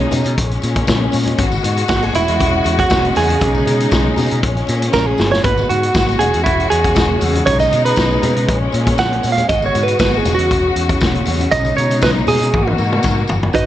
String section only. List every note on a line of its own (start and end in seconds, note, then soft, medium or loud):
0.00 0.34 C#3 medium
0.00 0.36 G#3 medium
0.00 0.37 D#4 medium
0.38 1.38 A#2 medium
0.38 5.41 G#3 medium
0.38 1.38 C#4 medium
1.39 2.14 B2 medium
1.39 3.40 F#4 medium
2.15 4.41 C#3 medium
3.41 4.42 D#4 medium
4.43 5.43 A#2 medium
4.43 5.43 C#4 medium
5.44 6.20 B2 medium
5.44 11.48 G#3 medium
5.44 7.45 F#4 medium
6.21 8.46 C#3 medium
7.47 8.47 D#4 medium
8.49 9.49 A#2 medium
8.49 9.49 C#4 medium
9.50 10.25 B2 medium
9.50 11.50 F#4 medium
10.25 12.51 C#3 medium
11.52 12.52 G#3 medium
11.52 12.52 D#4 medium
12.53 13.54 B2 medium
12.53 13.53 A#3 medium
12.53 13.54 F#4 medium